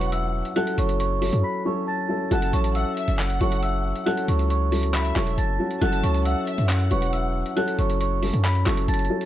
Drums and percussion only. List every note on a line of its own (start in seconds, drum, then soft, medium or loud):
0.01 closed hi-hat medium
0.12 closed hi-hat medium
0.45 closed hi-hat soft
0.56 closed hi-hat medium
0.67 closed hi-hat medium
0.78 closed hi-hat medium
0.89 closed hi-hat medium
1.00 closed hi-hat medium
1.22 open hi-hat medium
1.33 closed hi-hat medium
2.31 closed hi-hat medium
2.42 closed hi-hat medium
2.53 closed hi-hat medium
2.64 closed hi-hat medium
2.75 closed hi-hat medium
2.97 closed hi-hat medium
3.08 closed hi-hat medium
3.19 clap loud
3.19 closed hi-hat medium
3.30 closed hi-hat medium
3.41 closed hi-hat medium
3.52 closed hi-hat medium
3.63 closed hi-hat medium
3.96 closed hi-hat soft
4.06 closed hi-hat medium
4.17 closed hi-hat medium
4.28 closed hi-hat medium
4.39 closed hi-hat medium
4.50 closed hi-hat medium
4.72 open hi-hat medium
4.83 closed hi-hat medium
4.94 clap loud
4.94 closed hi-hat medium
5.05 closed hi-hat medium
5.16 clap loud
5.16 closed hi-hat medium
5.27 closed hi-hat medium
5.38 closed hi-hat medium
5.71 closed hi-hat soft
5.82 closed hi-hat medium
5.93 closed hi-hat medium
6.03 closed hi-hat medium
6.14 closed hi-hat medium
6.25 closed hi-hat medium
6.47 closed hi-hat medium
6.58 closed hi-hat medium
6.69 clap loud
6.69 closed hi-hat medium
6.80 closed hi-hat medium
6.91 closed hi-hat medium
7.02 closed hi-hat medium
7.13 closed hi-hat medium
7.46 closed hi-hat soft
7.57 closed hi-hat medium
7.68 closed hi-hat medium
7.79 closed hi-hat medium
7.90 closed hi-hat medium
8.01 closed hi-hat medium
8.23 open hi-hat medium
8.33 closed hi-hat medium
8.44 clap loud
8.44 closed hi-hat medium
8.55 closed hi-hat medium
8.66 clap loud
8.66 closed hi-hat medium
8.77 closed hi-hat medium
8.88 closed hi-hat medium
8.94 closed hi-hat medium
8.99 closed hi-hat medium
9.05 closed hi-hat soft
9.21 closed hi-hat medium